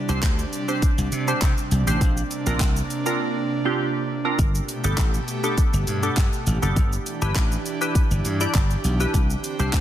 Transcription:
0.00 4.35 C3 medium
0.00 1.99 G3 medium
0.00 1.99 D4 medium
0.09 0.19 C2 loud
0.09 0.39 C4 loud
0.09 0.39 D4 medium
0.09 0.39 G4 medium
0.09 0.39 C5 loud
0.09 shaker medium
0.23 0.43 D2 loud
0.23 kick loud
0.23 clap loud
0.23 closed hi-hat medium
0.23 shaker medium
0.39 shaker medium
0.53 closed hi-hat soft
0.53 shaker medium
0.68 0.98 C4 medium
0.68 0.98 D4 medium
0.68 0.98 G4 medium
0.68 0.99 C5 loud
0.68 shaker medium
0.82 kick loud
0.82 closed hi-hat medium
0.82 shaker medium
0.98 1.08 C2 loud
0.98 shaker medium
1.12 1.32 C3 loud
1.12 closed hi-hat medium
1.12 shaker medium
1.28 1.58 C4 medium
1.28 1.58 D4 medium
1.28 1.58 G4 medium
1.28 1.58 C5 loud
1.28 shaker medium
1.42 1.53 C3 loud
1.42 kick loud
1.42 clap loud
1.42 closed hi-hat medium
1.42 shaker medium
1.58 shaker soft
1.71 1.82 C2 medium
1.71 closed hi-hat medium
1.71 shaker medium
1.87 1.97 A1 medium
1.87 2.01 C4 loud
1.87 2.01 D4 medium
1.87 2.01 G4 medium
1.87 2.01 C5 loud
1.87 shaker medium
2.01 2.21 A#1 loud
2.01 4.36 A#3 medium
2.01 4.36 D4 medium
2.01 kick loud
2.01 closed hi-hat medium
2.01 shaker medium
2.17 shaker medium
2.31 closed hi-hat medium
2.31 shaker medium
2.46 2.56 A#1 loud
2.46 2.77 C4 medium
2.46 2.77 D4 medium
2.46 2.77 F4 medium
2.46 2.77 A#4 loud
2.46 shaker medium
2.60 2.81 C2 medium
2.60 kick loud
2.60 clap loud
2.60 closed hi-hat medium
2.60 shaker medium
2.76 shaker medium
2.90 closed hi-hat soft
2.90 shaker soft
3.06 3.36 C4 medium
3.06 3.36 D4 medium
3.06 3.36 F4 medium
3.06 3.36 A#4 loud
3.06 shaker medium
3.65 3.95 C4 medium
3.65 3.95 D4 medium
3.65 3.95 F4 medium
3.65 3.96 G4 loud
4.25 4.39 C4 medium
4.25 4.39 D4 medium
4.25 4.39 F4 medium
4.25 4.39 A#4 loud
4.39 4.59 G1 loud
4.39 6.74 B2 medium
4.39 6.74 A3 medium
4.39 6.74 G4 medium
4.39 kick loud
4.39 closed hi-hat medium
4.39 shaker medium
4.55 shaker medium
4.69 closed hi-hat medium
4.69 shaker medium
4.84 4.94 G1 medium
4.84 5.14 B3 medium
4.84 5.14 D4 medium
4.84 5.14 G4 medium
4.84 5.14 A4 loud
4.84 shaker medium
4.98 5.18 A1 medium
4.98 kick loud
4.98 clap loud
4.98 closed hi-hat medium
4.98 shaker medium
5.14 shaker medium
5.28 closed hi-hat medium
5.28 shaker soft
5.43 5.74 B3 medium
5.43 5.74 D4 medium
5.43 5.74 G4 medium
5.43 5.74 A4 loud
5.43 shaker medium
5.58 kick loud
5.58 closed hi-hat medium
5.58 shaker medium
5.73 5.83 G1 loud
5.73 shaker medium
5.87 6.08 G2 loud
5.87 closed hi-hat medium
5.87 shaker medium
6.03 6.33 B3 medium
6.03 6.33 D4 medium
6.03 6.33 G4 medium
6.03 6.33 A4 loud
6.03 shaker medium
6.17 6.28 G2 loud
6.17 kick loud
6.17 clap loud
6.17 closed hi-hat medium
6.17 shaker medium
6.33 shaker soft
6.47 6.57 A1 medium
6.47 closed hi-hat medium
6.47 shaker medium
6.62 6.72 F#1 medium
6.62 6.76 B3 medium
6.62 6.76 D4 medium
6.62 6.77 G4 medium
6.62 6.77 A4 loud
6.62 shaker medium
6.76 6.97 G1 loud
6.76 9.12 E3 medium
6.76 9.12 D4 medium
6.76 9.80 G4 medium
6.76 kick loud
6.76 closed hi-hat medium
6.76 shaker medium
6.92 shaker medium
7.06 closed hi-hat medium
7.06 shaker medium
7.22 7.31 G1 medium
7.22 7.52 D4 medium
7.22 7.52 E4 medium
7.22 7.52 G4 medium
7.22 7.52 B4 loud
7.22 shaker medium
7.36 7.56 A1 medium
7.36 kick loud
7.36 clap loud
7.36 closed hi-hat medium
7.36 shaker medium
7.52 shaker medium
7.66 closed hi-hat soft
7.66 shaker medium
7.81 8.11 D4 medium
7.81 8.11 E4 medium
7.81 8.11 G4 medium
7.81 8.11 B4 loud
7.81 shaker medium
7.95 kick loud
7.95 closed hi-hat medium
7.95 shaker medium
8.11 8.21 G1 loud
8.11 shaker medium
8.25 8.45 G2 loud
8.25 closed hi-hat medium
8.25 shaker medium
8.41 8.71 D4 medium
8.41 8.71 E4 medium
8.41 8.71 G4 medium
8.41 8.71 D5 loud
8.41 shaker medium
8.55 8.75 G1 medium
8.55 kick loud
8.55 clap loud
8.55 closed hi-hat medium
8.55 shaker medium
8.70 shaker soft
8.84 9.05 B1 loud
8.84 closed hi-hat medium
8.84 shaker medium
9.00 9.14 D4 medium
9.00 9.14 E4 medium
9.00 9.14 G4 medium
9.00 9.14 B4 loud
9.00 shaker medium
9.14 9.34 C2 loud
9.14 9.80 D3 medium
9.14 9.80 C4 medium
9.14 kick loud
9.14 closed hi-hat medium
9.14 shaker medium
9.30 shaker medium
9.44 closed hi-hat medium
9.44 shaker medium
9.59 9.69 C2 medium
9.59 9.80 C4 loud
9.59 9.80 D4 medium
9.59 9.80 G4 medium
9.59 9.80 C5 loud
9.59 shaker medium
9.73 9.80 D2 loud
9.73 kick loud
9.73 clap loud
9.73 closed hi-hat medium
9.73 shaker medium

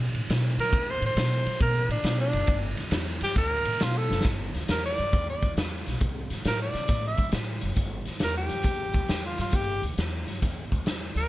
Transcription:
0.00 0.10 B2 loud
0.15 0.27 A2 medium
0.15 ride medium
0.29 0.55 B2 medium
0.29 snare loud
0.29 ride medium
0.58 0.71 D3 medium
0.58 0.92 A#4 loud
0.58 snare soft
0.58 ride medium
0.72 0.98 D2 loud
0.72 kick loud
0.72 ride medium
0.90 1.03 C5 loud
1.02 1.15 A2 loud
1.02 1.61 C5 medium
1.02 ride medium
1.16 1.42 B2 loud
1.16 snare loud
1.16 ride medium
1.46 1.59 D3 medium
1.46 ride medium
1.61 1.86 B2 loud
1.61 1.90 A#4 medium
1.61 kick loud
1.61 ride medium
1.89 2.02 A2 medium
1.89 2.19 D4 medium
1.89 ride medium
2.04 2.29 B2 medium
2.04 snare loud
2.04 ride medium
2.20 2.62 D4 loud
2.33 2.46 F#1 medium
2.33 ride medium
2.47 2.74 G1 medium
2.47 kick loud
2.47 ride medium
2.77 2.90 D2 loud
2.77 snare soft
2.77 ride medium
2.91 3.17 E2 medium
2.91 snare loud
2.91 ride loud
3.21 3.34 G2 medium
3.21 3.37 G4 loud
3.21 ride medium
3.36 3.62 D2 medium
3.36 3.84 A#4 medium
3.36 kick loud
3.36 snare soft
3.36 ride medium
3.65 3.78 A2 loud
3.65 ride medium
3.80 4.06 B2 loud
3.80 3.99 F4 medium
3.80 snare loud
3.80 ride medium
3.97 4.25 A4 medium
4.10 4.23 F#1 loud
4.10 snare medium
4.21 snare loud
4.21 closed hi-hat medium
4.25 4.50 G1 medium
4.25 kick loud
4.54 4.67 D2 medium
4.54 snare soft
4.54 closed hi-hat medium
4.68 4.94 E2 medium
4.68 4.84 A#4 medium
4.68 snare loud
4.68 closed hi-hat medium
4.85 5.27 D5 medium
4.98 5.11 G2 medium
4.98 closed hi-hat medium
5.13 5.38 E2 medium
5.13 kick loud
5.13 closed hi-hat medium
5.30 5.52 D5 medium
5.42 5.55 D2 medium
5.42 kick medium
5.42 closed hi-hat medium
5.57 5.82 E2 medium
5.57 snare loud
5.57 closed hi-hat medium
5.86 6.00 B1 medium
5.86 snare soft
5.86 closed hi-hat medium
6.00 6.27 C2 medium
6.00 kick loud
6.00 closed hi-hat medium
6.30 6.43 G2 medium
6.30 snare soft
6.30 closed hi-hat medium
6.45 6.71 A2 medium
6.45 6.61 A#4 medium
6.45 snare loud
6.45 closed hi-hat medium
6.62 7.04 D5 medium
6.73 6.87 C3 medium
6.73 snare soft
6.73 closed hi-hat medium
6.88 7.15 A2 medium
6.88 kick loud
6.88 snare soft
6.88 closed hi-hat medium
7.07 7.30 E5 medium
7.17 7.31 G2 medium
7.17 kick medium
7.17 closed hi-hat medium
7.32 7.58 A2 medium
7.32 snare loud
7.32 closed hi-hat medium
7.61 7.75 F#1 medium
7.61 closed hi-hat medium
7.76 8.03 G1 medium
7.76 kick loud
7.76 closed hi-hat medium
8.05 8.20 D2 medium
8.05 snare soft
8.05 closed hi-hat medium
8.19 8.47 E2 medium
8.19 snare loud
8.19 closed hi-hat medium
8.24 8.37 A#4 medium
8.37 9.22 G4 medium
8.49 8.64 G2 medium
8.49 closed hi-hat medium
8.63 8.90 E2 medium
8.63 kick loud
8.63 closed hi-hat medium
8.93 9.07 D2 medium
8.93 kick medium
8.93 closed hi-hat medium
9.08 9.35 E2 medium
9.08 snare loud
9.08 closed hi-hat medium
9.26 9.39 F4 medium
9.38 9.52 G2 medium
9.38 9.57 F4 medium
9.38 snare soft
9.38 closed hi-hat medium
9.51 9.79 G1 medium
9.51 9.83 G4 loud
9.51 kick loud
9.51 closed hi-hat medium
9.83 9.96 D2 medium
9.83 closed hi-hat medium
9.98 10.23 E2 medium
9.98 snare loud
9.98 closed hi-hat medium
10.26 10.39 G2 medium
10.26 snare soft
10.26 closed hi-hat medium
10.42 10.68 E2 medium
10.42 kick loud
10.42 snare soft
10.42 closed hi-hat medium
10.72 10.84 D2 medium
10.72 kick medium
10.72 closed hi-hat medium
10.86 11.11 E2 medium
10.86 snare loud
10.86 closed hi-hat medium
11.16 11.28 D2 medium
11.16 11.28 A#4 medium
11.16 closed hi-hat medium

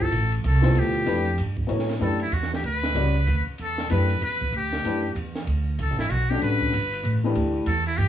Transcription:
0.00 0.11 G1 medium
0.00 0.33 A4 medium
0.00 0.10 C5 medium
0.00 kick medium
0.11 0.42 A1 loud
0.11 hi-hat pedal medium
0.11 ride medium
0.32 ride soft
0.44 0.74 C2 loud
0.44 0.80 A4 medium
0.44 hi-hat pedal medium
0.44 ride medium
0.62 1.04 B2 medium
0.62 1.04 F3 medium
0.62 1.04 E4 medium
0.62 1.04 A4 medium
0.62 1.04 C5 medium
0.62 snare soft
0.75 1.06 D2 medium
0.75 1.40 G4 medium
0.75 ride medium
1.05 1.37 F2 medium
1.05 1.24 E3 medium
1.05 1.24 A3 medium
1.05 1.24 D4 medium
1.05 1.24 G4 medium
1.05 1.24 B4 medium
1.05 ride medium
1.38 1.70 G2 medium
1.38 hi-hat pedal medium
1.38 ride medium
1.57 kick medium
1.67 2.00 A2 medium
1.67 1.86 F#3 medium
1.67 1.86 B3 medium
1.67 1.86 E4 medium
1.67 1.87 A4 medium
1.67 1.87 C#5 medium
1.67 ride medium
1.79 snare soft
1.89 snare soft
1.89 ride medium
1.99 2.31 F#2 medium
1.99 2.18 E3 medium
1.99 2.18 A3 medium
1.99 2.18 D4 medium
1.99 2.18 G4 medium
1.99 2.20 A4 medium
1.99 2.19 B4 medium
1.99 hi-hat pedal medium
2.20 2.35 E4 medium
2.20 ride soft
2.32 2.63 E2 medium
2.32 2.53 F#4 medium
2.32 hi-hat pedal soft
2.32 ride medium
2.43 snare soft
2.54 2.64 G4 medium
2.54 snare soft
2.63 2.94 D2 medium
2.63 3.44 B4 loud
2.63 ride medium
2.83 snare medium
2.95 3.26 C#2 medium
2.95 3.13 G3 medium
2.95 3.13 C#4 medium
2.95 3.13 F#4 medium
2.95 3.14 B4 medium
2.95 3.14 D5 medium
2.95 ride medium
3.27 3.45 D2 medium
3.27 hi-hat pedal medium
3.27 ride medium
3.47 muted upright bass stroke soft
3.58 3.90 E2 medium
3.58 3.90 A4 medium
3.58 ride medium
3.78 snare soft
3.89 4.21 F#2 medium
3.89 4.08 E3 medium
3.89 4.08 A3 medium
3.89 4.08 D4 medium
3.89 4.08 G4 medium
3.89 4.20 B4 medium
3.89 4.09 B4 medium
3.89 hi-hat pedal medium
3.89 ride medium
4.10 ride soft
4.21 4.52 E2 medium
4.21 4.52 B4 medium
4.21 hi-hat pedal medium
4.21 ride medium
4.41 kick medium
4.41 ride soft
4.53 4.83 D2 medium
4.53 ride medium
4.57 5.14 G4 medium
4.73 snare soft
4.84 5.15 F#2 medium
4.84 5.02 E3 medium
4.84 5.02 A3 medium
4.84 5.03 D4 medium
4.84 5.03 G4 medium
4.84 5.03 B4 medium
4.84 hi-hat pedal medium
4.84 ride medium
5.15 5.46 E2 medium
5.15 ride medium
5.36 snare soft
5.36 ride soft
5.47 5.78 D2 medium
5.47 ride medium
5.79 5.90 C#2 medium
5.79 5.99 A4 medium
5.79 hi-hat pedal medium
5.79 ride medium
5.90 6.00 A1 medium
5.99 6.09 G1 medium
5.99 6.12 E4 medium
5.99 snare soft
5.99 ride soft
6.10 6.41 B1 medium
6.10 6.31 F#4 medium
6.10 hi-hat pedal medium
6.10 ride medium
6.30 6.71 D3 medium
6.30 6.71 G3 medium
6.30 6.71 C#4 medium
6.30 6.72 F#4 medium
6.30 6.42 G4 medium
6.30 6.72 A4 medium
6.42 6.72 A1 medium
6.42 7.21 B4 loud
6.42 ride medium
6.61 kick medium
6.72 7.03 G1 medium
6.72 hi-hat pedal medium
6.72 ride medium
6.93 ride medium
7.03 7.34 A1 medium
7.03 ride medium
7.24 7.65 E3 medium
7.24 7.65 A3 medium
7.24 7.65 D4 medium
7.24 7.65 G4 medium
7.24 7.66 B4 medium
7.35 7.66 D2 medium
7.35 ride medium
7.66 7.97 E2 medium
7.66 7.86 A4 medium
7.66 hi-hat pedal medium
7.66 ride medium
7.86 7.99 E4 medium
7.86 ride soft
7.97 8.08 G2 medium
7.97 8.08 G4 medium
7.97 hi-hat pedal soft
7.97 ride medium

